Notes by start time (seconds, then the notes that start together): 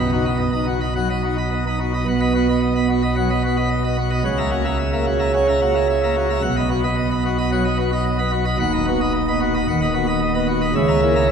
Already playing: B1 B2
0.00 B5
0.12 D#4 F#4
0.25 D#5 B5
0.39 B3 D#5
0.53 D#4 D#5 B5
0.67 F#4
0.81 D#5 B5
0.95 F#3 F#5
1.10 D#5 B5
1.23 D#4 F#4
1.37 D#5 B5
1.51 B3 D#5
1.67 D#4 D#5 B5
1.80 F#4
1.94 D#5 B5
2.07 B1 B2 F#5
2.20 D#5 B5
2.34 B3 F#4
2.48 D#5 B5
2.61 D#5
2.75 B3 D#5 B5
2.89 F#4
3.02 D#5 B5
3.16 F#3 F#5
3.30 D#5 B5
3.44 B3 F#4
3.57 D#5 B5
3.70 D#5
3.84 B3 D#5 B5
3.98 F#4
4.10 D#5 B5
4.24 C#2 C#3 F#5
4.38 E5 A#5
4.51 A#3 F#4
4.65 E5 A#5
4.79 E5
4.93 A#3 E5 A#5
5.06 F#4
5.19 E5 A#5
5.34 C#4 F#5
5.48 E5 A#5
5.61 A#3 F#4
5.75 E5 A#5
5.90 E5
6.03 A#3 E5 A#5
6.16 F#4
6.30 E5 A#5
6.42 B1 B2 F#5
6.56 D#5 B5
6.70 B3 F#4
6.84 D#5 B5
6.97 D#5
7.11 B3 D#5 B5
7.25 F#4
7.38 D#5 B5
7.52 F#3 F#5
7.64 D#5 B5
7.78 B3 F#4
7.92 D#5 B5
8.05 D#5
8.18 B3 D#5 B5
8.32 F#4
8.45 D#5 B5
8.59 D#1 D#2 F#5
8.73 D#5 B5
8.87 B3 F#4
9.01 D#5 B5
9.14 D#5
9.28 B3 D#5 B5
9.41 F#4
9.54 D#5 B5
9.67 D#1 D#2 F#5
9.81 D#5 B5
9.93 B3 F#4
10.07 D#5 B5
10.22 D#5
10.34 B3 D#5 B5
10.48 F#4
10.61 D#5 B5
10.75 C#2 C#3 E5
10.88 E5 A#5
11.01 A#3 E4
11.15 E5 A#5